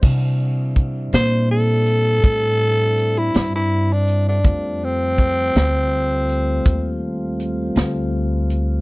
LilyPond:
<<
  \new Staff \with { instrumentName = "Tenor saxophone" } { \time 12/8 \key c \mixolydian \tempo 4. = 54 r4. c''8 a'2~ a'16 e'8 e'8 d'8 d'16~ | d'8 c'2. r2 r8 | }
  \new Staff \with { instrumentName = "Tonewheel organ" } { \time 12/8 \key c \mixolydian <g c' d' e'>1. | <g a c' f'>1. | }
  \new Staff \with { instrumentName = "Upright bass" } { \clef bass \time 12/8 \key c \mixolydian c4. bes,4. a,4. g,4. | f,4. d,4. ees,4. d,4. | }
  \new DrumStaff \with { instrumentName = "Drums" } \drummode { \time 12/8 <cymc bd>4 <hh bd>8 <hh sn>4 hh8 <hh bd>4 hh8 <hh sn>4 hh8 | <hh bd>4 <hh bd>8 <hh sn>4 hh8 <hh bd>4 hh8 <hh sn>4 hh8 | }
>>